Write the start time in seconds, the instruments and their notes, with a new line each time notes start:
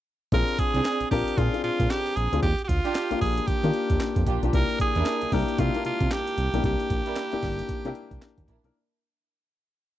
0.32 analog synth bass A#1, grand piano C4 D4 F4 G#4, tenor saxophone A#4, kick, closed hi-hat
0.48 closed hi-hat
0.59 tenor saxophone G#4, kick, closed hi-hat
0.74 analog synth bass C2, string section C4 D4 G#4, closed hi-hat
0.85 snare, clap, closed hi-hat
1.00 analog synth bass A#1, closed hi-hat
1.11 analog synth bass A#1, grand piano C4 D4 F4 A#4, tenor saxophone G4, kick, open hi-hat
1.28 closed hi-hat
1.37 analog synth bass A#2, grand piano C4 D4 F4 G#4, tenor saxophone F4, kick, closed hi-hat
1.53 grand piano C4 D4 F4 G#4, closed hi-hat
1.64 analog synth bass A#2, tenor saxophone F4, closed hi-hat
1.80 analog synth bass A#2, kick, closed hi-hat
1.90 tenor saxophone G4, snare, clap, closed hi-hat
2.07 closed hi-hat
2.16 analog synth bass A#1, tenor saxophone G#4, closed hi-hat
2.32 analog synth bass D2, grand piano C4 D4 F4 G#4, closed hi-hat
2.42 analog synth bass D#2, tenor saxophone G4, kick, closed hi-hat
2.59 closed hi-hat
2.64 tenor saxophone G4
2.68 analog synth bass D2, tenor saxophone F4, kick, closed hi-hat
2.85 string section D4 F4 G4, closed hi-hat
2.95 snare, clap, closed hi-hat
3.10 analog synth bass A#1, grand piano A#3 D4 F4 G4, closed hi-hat
3.21 analog synth bass A#1, tenor saxophone G#4, kick, open hi-hat
3.37 closed hi-hat
3.47 analog synth bass D#3, tenor saxophone G4, kick, closed hi-hat
3.64 analog synth bass D#3, grand piano A#3 D4 F4 G4, closed hi-hat
3.74 closed hi-hat
3.90 analog synth bass D#2, kick, closed hi-hat
4.00 snare, clap, closed hi-hat
4.16 analog synth bass F2, kick, closed hi-hat
4.27 analog synth bass A#1, string section D4 F4 G4, kick, closed hi-hat
4.43 analog synth bass B1, grand piano A#3 D4 F4 G4, closed hi-hat
4.53 analog synth bass C2, grand piano A#3 D4 E4 G4, tenor saxophone A#4, kick, closed hi-hat
4.69 closed hi-hat
4.80 tenor saxophone G#4, kick, closed hi-hat
4.95 analog synth bass E2, string section D4 E4 A#4, closed hi-hat
5.06 snare, clap, closed hi-hat
5.22 analog synth bass C2, closed hi-hat
5.32 analog synth bass C2, grand piano A#3 D4 E4 A#4, tenor saxophone G4, kick, open hi-hat
5.49 closed hi-hat
5.58 analog synth bass C3, grand piano A#3 D4 E4 G4, tenor saxophone F4, kick, closed hi-hat
5.74 grand piano A#3 D4 E4 A#4, closed hi-hat
5.85 analog synth bass C3, tenor saxophone F4, closed hi-hat
6.00 analog synth bass C3, kick, closed hi-hat
6.11 tenor saxophone G4, snare, clap, closed hi-hat
6.27 closed hi-hat
6.37 analog synth bass C2, closed hi-hat
6.54 analog synth bass B1, grand piano A#3 D4 E4 G4, closed hi-hat
6.64 analog synth bass C2, tenor saxophone G4, kick, closed hi-hat
6.80 closed hi-hat
6.90 analog synth bass A#1, kick, closed hi-hat
7.06 string section D4 E4 A#4, closed hi-hat
7.16 snare, clap, closed hi-hat
7.32 analog synth bass G1, grand piano A#3 D4 E4 G4, closed hi-hat
7.43 analog synth bass G1, kick, snare, open hi-hat
7.59 closed hi-hat
7.69 analog synth bass C3, kick, closed hi-hat
7.85 analog synth bass C3, grand piano A#3 D4 E4 G4, closed hi-hat
7.95 closed hi-hat
8.11 analog synth bass C2, kick, closed hi-hat
8.22 snare, clap, closed hi-hat
8.38 analog synth bass D#2, kick, closed hi-hat
8.48 analog synth bass A#1, string section D4 E4 A#4, kick, closed hi-hat
8.64 analog synth bass B1, grand piano A#3 D4 E4 A#4, closed hi-hat